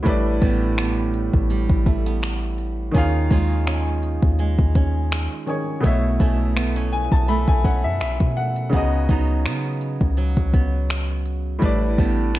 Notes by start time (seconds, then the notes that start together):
Already playing: F#3 B3
0.03 A1 A2 G3, kick, closed hi-hat
0.07 D4 B4 D5
0.42 A1 G3 B3 D4, kick, closed hi-hat
0.78 B3, finger snap, closed hi-hat
1.14 closed hi-hat
1.33 A1, kick
1.50 G3, closed hi-hat
1.70 A1, kick
1.86 A3, kick, closed hi-hat
2.06 B3
2.22 finger snap, closed hi-hat
2.58 closed hi-hat
2.91 D#2 D#3 C#4, kick, closed hi-hat
2.96 F4 G#4 F5
3.31 D#2 G#3 C#4 F4, kick, closed hi-hat
3.67 C#4, finger snap, closed hi-hat
4.03 closed hi-hat
4.22 D#2, kick
4.39 G#3, closed hi-hat
4.59 D#2, kick
4.75 C#4, kick, closed hi-hat
5.12 finger snap, closed hi-hat
5.46 D#3 C#4 G#4 C#5, closed hi-hat
5.80 B1 B2 A3, kick, closed hi-hat
5.84 E4 C#5 E5
6.20 B1 A3 C#4 E4, kick, closed hi-hat
6.56 B3, finger snap, closed hi-hat
6.76 C#4
6.93 G#5, closed hi-hat
7.04 closed hi-hat
7.12 B1 A5, kick
7.16 closed hi-hat
7.28 A3 B5, closed hi-hat
7.48 B1 G#5, kick
7.64 C#4 F#5, kick, closed hi-hat
7.84 F#2 E5
8.00 B1 E5, finger snap, closed hi-hat
8.20 B2, kick
8.37 F#5, closed hi-hat
8.56 closed hi-hat
8.70 C#2 C#3 B3 D#4, kick, closed hi-hat
8.74 F#4 D#5
9.09 C#2 F#3 B3 D#4, kick, closed hi-hat
9.45 C#3 B3, finger snap, closed hi-hat
9.81 closed hi-hat
10.01 C#2, kick
10.17 F#3, closed hi-hat
10.37 C#2, kick
10.54 B3, kick, closed hi-hat
10.90 finger snap, closed hi-hat
11.26 closed hi-hat
11.59 A1 A2 G3, kick, closed hi-hat
11.63 D4 B4 D5
11.98 A1 G3 B3 D4, kick, closed hi-hat
12.35 B3, finger snap, closed hi-hat